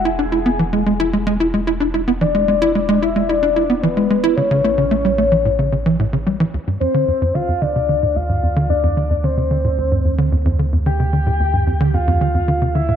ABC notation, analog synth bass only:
X:1
M:4/4
L:1/16
Q:1/4=111
K:Emix
V:1 name="Analog synth bass" clef=bass
E D E B, E, G, G, E G, G, E G, E D E B, | E, G, G, E G, G, E G, E D E B, E, G, G, E | C, C, A, C, A, =G, A, E, A,, C, C, E, A,, C, G, E, | [K:Dm] D,, G,, F,, D, F,, F,, D, F,, D, C, D, A,, D,, G,, F,, D, |
F,, F,, D, F,, D, C, D, A,, D,, G,, F,, D, F,, F,, D, F,, | D, C, D, A,, D,, G,, F,, D, F,, F,, D, F,, D, C, D, A,, |]